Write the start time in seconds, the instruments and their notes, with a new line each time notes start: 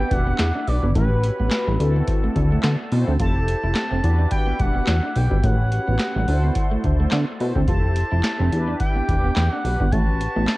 Already playing: analog polysynth D4 F#4 G4 B4, flute section E4 E5 F#5 D6, analog synth lead G5
0.11 analog synth bass E1, analog synth lead F#5, muted clean electric guitar stroke, kick, closed hi-hat
0.27 clean electric guitar B3
0.39 analog synth bass E2, snare, clap, closed hi-hat
0.55 clean electric guitar D4
0.67 analog synth bass B1, analog polysynth D4 F#4 G4 B4, analog synth lead D5, muted clean electric guitar stroke, open hi-hat
0.83 analog synth bass G1, clean electric guitar B3, kick
0.95 analog synth bass A1, clean electric guitar A3, analog polysynth C#4 F#4 G4 B4, analog synth lead B4, flute section C#5 F#5 B5, kick, closed hi-hat
1.23 muted clean electric guitar stroke, closed hi-hat
1.40 analog synth bass A1, clean electric guitar B3
1.51 snare, clap, closed hi-hat
1.68 analog synth bass A1, clean electric guitar G3
1.79 analog synth bass D2, analog polysynth C4 E4 F#4 A4, flute section A4 D5 F#5 A5, muted clean electric guitar stroke, closed hi-hat
1.96 clean electric guitar B3
2.07 kick, closed hi-hat
2.24 clean electric guitar A3
2.36 analog synth bass D2, muted clean electric guitar stroke, kick, closed hi-hat
2.52 clean electric guitar A3
2.63 analog synth bass D3, clean electric guitar B3, snare, clap, closed hi-hat
2.92 analog synth bass B2, analog polysynth C4 E4 F#4 C5, muted clean electric guitar stroke, open hi-hat
3.07 analog synth bass D2, clean electric guitar C4
3.19 analog synth bass F1, analog polysynth C4 E4 G4 A4, clean electric guitar F4, flute section C5 E5, analog synth lead A5, kick, closed hi-hat
3.47 muted clean electric guitar stroke, closed hi-hat
3.63 analog synth bass F1, clean electric guitar E4
3.75 snare, clap, closed hi-hat
3.91 analog synth bass F1, clean electric guitar C4
4.03 analog synth bass E2, analog polysynth D4 F#4 G4 B4, flute section E4 E5 F#5 D6, muted clean electric guitar stroke, closed hi-hat
4.19 clean electric guitar D4
4.31 analog synth lead G5, kick, closed hi-hat
4.47 clean electric guitar B3
4.59 analog synth bass E1, analog synth lead F#5, muted clean electric guitar stroke, kick, closed hi-hat
4.75 clean electric guitar B3
4.87 analog synth bass E2, snare, clap, closed hi-hat
5.03 clean electric guitar D4
5.16 analog synth bass B1, analog polysynth D4 F#4 G4 B4, analog synth lead G5, muted clean electric guitar stroke, open hi-hat
5.31 analog synth bass G1, clean electric guitar B3, kick
5.43 analog synth bass A1, clean electric guitar A3, analog polysynth C#4 F#4 G4 A#4, flute section C#5 F#5 B5, analog synth lead F#5, kick, closed hi-hat
5.51 analog polysynth B4
5.71 muted clean electric guitar stroke, closed hi-hat
5.88 analog synth bass A1, clean electric guitar B3
5.99 snare, clap, closed hi-hat
6.16 analog synth bass A1, clean electric guitar G3
6.28 analog synth bass D2, analog polysynth E4 F4 A4 C5, flute section A4 D5 C6, muted clean electric guitar stroke, open hi-hat
6.35 analog polysynth F#4
6.44 clean electric guitar B3
6.55 kick, closed hi-hat
6.71 clean electric guitar A3
6.84 analog synth bass D2, muted clean electric guitar stroke, kick, closed hi-hat
7.00 clean electric guitar A3
7.11 analog synth bass D3, clean electric guitar B3, snare, clap, closed hi-hat
7.40 analog synth bass B2, analog polysynth E4 F#4 A4 C5, muted clean electric guitar stroke, open hi-hat
7.56 analog synth bass D2, clean electric guitar C4, kick
7.68 analog synth bass F1, analog polysynth E4 G4 A4 C5, clean electric guitar F4, flute section E5 A5 C6, analog synth lead A5, kick, closed hi-hat
7.96 muted clean electric guitar stroke, closed hi-hat
8.12 analog synth bass F1, clean electric guitar E4
8.23 snare, clap, closed hi-hat
8.39 analog synth bass F1, clean electric guitar C4
8.52 analog synth bass E2, analog polysynth D4 E4 G4 B4, flute section G4 D6, muted clean electric guitar stroke, closed hi-hat
8.68 clean electric guitar D4
8.80 analog synth lead G5, kick, closed hi-hat
8.96 clean electric guitar B3
9.09 analog synth bass E1, muted clean electric guitar stroke, kick, closed hi-hat
9.24 clean electric guitar B3
9.36 analog synth bass E2, snare, clap, closed hi-hat
9.52 clean electric guitar D4, analog synth lead F#5
9.64 analog synth bass B1, analog polysynth D4 F#4 G4 B4, muted clean electric guitar stroke, open hi-hat
9.80 analog synth bass G1, clean electric guitar B3, kick
9.92 analog synth bass A1, clean electric guitar A3, analog polysynth C#4 F#4 G4 B4, flute section B4 F#5 C#6, analog synth lead A5, kick, closed hi-hat
10.21 muted clean electric guitar stroke, closed hi-hat
10.36 analog synth bass A1, clean electric guitar B3
10.47 snare, clap, closed hi-hat